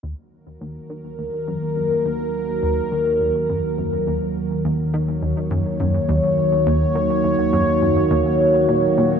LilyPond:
<<
  \new Staff \with { instrumentName = "Analog synth pad" } { \time 4/4 \key ees \minor \tempo 4 = 104 << { bes'1~ | bes'1 | des''1~ | des''1 | } \\ { <ees ges bes ges'>1~ | <ees ges bes ges'>1~ | <ees ges bes ges'>1~ | <ees ges bes ges'>1 | } >> }
  \new Staff \with { instrumentName = "Analog synth bass" } { \clef bass \time 4/4 \key ees \minor ees,8 r8 ees,8 ees8 ees,8 ges,8 ges,8 ees,8 | r8 ees,8 ees8 ees,8 ges,8 ges,8 ees,8 r8 | ees,8 ees8 ees,8 ges,8 ges,8 ees,8 r8 ees,8 | ees8 ees,8 ges,8 ges,8 ees,8 r8 bes,8 bes,8 | }
  \new Staff \with { instrumentName = "Synth drone" } { \clef bass \time 4/4 \key ees \minor ees,1~ | ees,1~ | ees,1~ | ees,1 | }
>>